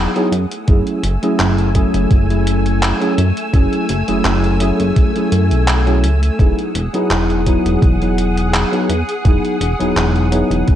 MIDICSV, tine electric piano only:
0, 0, Header, 1, 2, 480
1, 0, Start_track
1, 0, Tempo, 714286
1, 457, Time_signature, 4, 2, 24, 8
1, 7226, End_track
2, 0, Start_track
2, 0, Title_t, "Tine electric piano"
2, 0, Program_c, 0, 4
2, 0, Note_on_c, 0, 54, 77
2, 0, Note_on_c, 0, 59, 73
2, 0, Note_on_c, 0, 63, 70
2, 0, Note_on_c, 0, 64, 70
2, 0, Note_on_c, 0, 68, 83
2, 73, Note_off_c, 0, 54, 0
2, 74, Note_off_c, 0, 59, 0
2, 75, Note_off_c, 0, 63, 0
2, 76, Note_off_c, 0, 64, 0
2, 78, Note_off_c, 0, 68, 0
2, 102, Note_on_c, 0, 54, 89
2, 103, Note_on_c, 0, 59, 83
2, 107, Note_on_c, 0, 63, 80
2, 108, Note_on_c, 0, 64, 81
2, 111, Note_on_c, 0, 68, 98
2, 202, Note_off_c, 0, 54, 0
2, 203, Note_off_c, 0, 59, 0
2, 205, Note_off_c, 0, 63, 0
2, 205, Note_off_c, 0, 64, 0
2, 207, Note_off_c, 0, 68, 0
2, 456, Note_on_c, 0, 54, 77
2, 460, Note_on_c, 0, 57, 74
2, 462, Note_on_c, 0, 61, 71
2, 464, Note_on_c, 0, 64, 73
2, 467, Note_on_c, 0, 68, 89
2, 672, Note_off_c, 0, 54, 0
2, 674, Note_off_c, 0, 57, 0
2, 675, Note_off_c, 0, 61, 0
2, 676, Note_off_c, 0, 64, 0
2, 677, Note_off_c, 0, 68, 0
2, 822, Note_on_c, 0, 54, 98
2, 824, Note_on_c, 0, 57, 85
2, 826, Note_on_c, 0, 61, 87
2, 830, Note_on_c, 0, 64, 91
2, 831, Note_on_c, 0, 68, 102
2, 1149, Note_off_c, 0, 54, 0
2, 1150, Note_off_c, 0, 57, 0
2, 1151, Note_off_c, 0, 61, 0
2, 1153, Note_off_c, 0, 64, 0
2, 1153, Note_off_c, 0, 68, 0
2, 1173, Note_on_c, 0, 54, 93
2, 1175, Note_on_c, 0, 57, 85
2, 1178, Note_on_c, 0, 61, 89
2, 1181, Note_on_c, 0, 64, 85
2, 1184, Note_on_c, 0, 68, 104
2, 1512, Note_off_c, 0, 54, 0
2, 1513, Note_off_c, 0, 57, 0
2, 1515, Note_off_c, 0, 61, 0
2, 1516, Note_off_c, 0, 64, 0
2, 1518, Note_off_c, 0, 68, 0
2, 1538, Note_on_c, 0, 54, 77
2, 1541, Note_on_c, 0, 57, 69
2, 1545, Note_on_c, 0, 61, 70
2, 1547, Note_on_c, 0, 64, 72
2, 1549, Note_on_c, 0, 68, 82
2, 1991, Note_off_c, 0, 54, 0
2, 1992, Note_off_c, 0, 57, 0
2, 1994, Note_off_c, 0, 61, 0
2, 1995, Note_off_c, 0, 64, 0
2, 1996, Note_off_c, 0, 68, 0
2, 2016, Note_on_c, 0, 54, 85
2, 2019, Note_on_c, 0, 57, 79
2, 2021, Note_on_c, 0, 61, 81
2, 2023, Note_on_c, 0, 64, 78
2, 2026, Note_on_c, 0, 68, 97
2, 2147, Note_off_c, 0, 54, 0
2, 2149, Note_off_c, 0, 57, 0
2, 2150, Note_off_c, 0, 61, 0
2, 2151, Note_off_c, 0, 64, 0
2, 2152, Note_off_c, 0, 68, 0
2, 2369, Note_on_c, 0, 54, 77
2, 2373, Note_on_c, 0, 57, 69
2, 2375, Note_on_c, 0, 61, 68
2, 2377, Note_on_c, 0, 64, 72
2, 2379, Note_on_c, 0, 68, 89
2, 2589, Note_off_c, 0, 54, 0
2, 2591, Note_off_c, 0, 57, 0
2, 2591, Note_off_c, 0, 61, 0
2, 2592, Note_off_c, 0, 64, 0
2, 2593, Note_off_c, 0, 68, 0
2, 2739, Note_on_c, 0, 54, 92
2, 2740, Note_on_c, 0, 57, 88
2, 2743, Note_on_c, 0, 61, 82
2, 2746, Note_on_c, 0, 64, 88
2, 2748, Note_on_c, 0, 68, 103
2, 3067, Note_off_c, 0, 54, 0
2, 3068, Note_off_c, 0, 57, 0
2, 3069, Note_off_c, 0, 61, 0
2, 3071, Note_off_c, 0, 64, 0
2, 3072, Note_off_c, 0, 68, 0
2, 3090, Note_on_c, 0, 54, 90
2, 3093, Note_on_c, 0, 57, 86
2, 3095, Note_on_c, 0, 61, 89
2, 3097, Note_on_c, 0, 64, 84
2, 3100, Note_on_c, 0, 68, 105
2, 3430, Note_off_c, 0, 54, 0
2, 3432, Note_off_c, 0, 57, 0
2, 3433, Note_off_c, 0, 61, 0
2, 3434, Note_off_c, 0, 64, 0
2, 3436, Note_off_c, 0, 68, 0
2, 3463, Note_on_c, 0, 54, 74
2, 3465, Note_on_c, 0, 57, 68
2, 3469, Note_on_c, 0, 61, 71
2, 3472, Note_on_c, 0, 64, 69
2, 3473, Note_on_c, 0, 68, 87
2, 3913, Note_off_c, 0, 54, 0
2, 3914, Note_off_c, 0, 57, 0
2, 3916, Note_off_c, 0, 61, 0
2, 3918, Note_off_c, 0, 64, 0
2, 3918, Note_off_c, 0, 68, 0
2, 3939, Note_on_c, 0, 54, 88
2, 3942, Note_on_c, 0, 57, 79
2, 3944, Note_on_c, 0, 61, 83
2, 3948, Note_on_c, 0, 64, 81
2, 3950, Note_on_c, 0, 68, 96
2, 4069, Note_off_c, 0, 54, 0
2, 4070, Note_off_c, 0, 57, 0
2, 4071, Note_off_c, 0, 61, 0
2, 4073, Note_off_c, 0, 64, 0
2, 4074, Note_off_c, 0, 68, 0
2, 4295, Note_on_c, 0, 54, 81
2, 4297, Note_on_c, 0, 59, 70
2, 4298, Note_on_c, 0, 63, 72
2, 4301, Note_on_c, 0, 64, 68
2, 4305, Note_on_c, 0, 68, 86
2, 4511, Note_off_c, 0, 54, 0
2, 4512, Note_off_c, 0, 59, 0
2, 4513, Note_off_c, 0, 63, 0
2, 4514, Note_off_c, 0, 64, 0
2, 4516, Note_off_c, 0, 68, 0
2, 4661, Note_on_c, 0, 54, 93
2, 4664, Note_on_c, 0, 59, 87
2, 4666, Note_on_c, 0, 63, 85
2, 4669, Note_on_c, 0, 64, 89
2, 4670, Note_on_c, 0, 68, 104
2, 4988, Note_off_c, 0, 54, 0
2, 4990, Note_off_c, 0, 59, 0
2, 4991, Note_off_c, 0, 63, 0
2, 4992, Note_off_c, 0, 64, 0
2, 4993, Note_off_c, 0, 68, 0
2, 5016, Note_on_c, 0, 54, 99
2, 5019, Note_on_c, 0, 59, 89
2, 5021, Note_on_c, 0, 63, 86
2, 5023, Note_on_c, 0, 64, 85
2, 5025, Note_on_c, 0, 68, 99
2, 5354, Note_off_c, 0, 54, 0
2, 5355, Note_off_c, 0, 59, 0
2, 5356, Note_off_c, 0, 63, 0
2, 5357, Note_off_c, 0, 64, 0
2, 5358, Note_off_c, 0, 68, 0
2, 5383, Note_on_c, 0, 54, 79
2, 5385, Note_on_c, 0, 59, 72
2, 5388, Note_on_c, 0, 63, 71
2, 5390, Note_on_c, 0, 64, 69
2, 5393, Note_on_c, 0, 68, 83
2, 5833, Note_off_c, 0, 54, 0
2, 5834, Note_off_c, 0, 59, 0
2, 5836, Note_off_c, 0, 63, 0
2, 5837, Note_off_c, 0, 64, 0
2, 5838, Note_off_c, 0, 68, 0
2, 5859, Note_on_c, 0, 54, 89
2, 5862, Note_on_c, 0, 59, 82
2, 5865, Note_on_c, 0, 63, 80
2, 5868, Note_on_c, 0, 64, 78
2, 5870, Note_on_c, 0, 68, 95
2, 5989, Note_off_c, 0, 54, 0
2, 5990, Note_off_c, 0, 59, 0
2, 5991, Note_off_c, 0, 63, 0
2, 5993, Note_off_c, 0, 64, 0
2, 5994, Note_off_c, 0, 68, 0
2, 6214, Note_on_c, 0, 54, 78
2, 6215, Note_on_c, 0, 59, 72
2, 6219, Note_on_c, 0, 63, 71
2, 6220, Note_on_c, 0, 64, 75
2, 6224, Note_on_c, 0, 68, 84
2, 6431, Note_off_c, 0, 54, 0
2, 6432, Note_off_c, 0, 59, 0
2, 6433, Note_off_c, 0, 63, 0
2, 6434, Note_off_c, 0, 64, 0
2, 6436, Note_off_c, 0, 68, 0
2, 6580, Note_on_c, 0, 54, 97
2, 6583, Note_on_c, 0, 59, 86
2, 6586, Note_on_c, 0, 63, 85
2, 6588, Note_on_c, 0, 64, 89
2, 6590, Note_on_c, 0, 68, 102
2, 6907, Note_off_c, 0, 54, 0
2, 6909, Note_off_c, 0, 59, 0
2, 6910, Note_off_c, 0, 63, 0
2, 6911, Note_off_c, 0, 64, 0
2, 6912, Note_off_c, 0, 68, 0
2, 6933, Note_on_c, 0, 54, 95
2, 6936, Note_on_c, 0, 59, 87
2, 6937, Note_on_c, 0, 63, 88
2, 6942, Note_on_c, 0, 64, 87
2, 6944, Note_on_c, 0, 68, 104
2, 7226, Note_off_c, 0, 54, 0
2, 7226, Note_off_c, 0, 59, 0
2, 7226, Note_off_c, 0, 63, 0
2, 7226, Note_off_c, 0, 64, 0
2, 7226, Note_off_c, 0, 68, 0
2, 7226, End_track
0, 0, End_of_file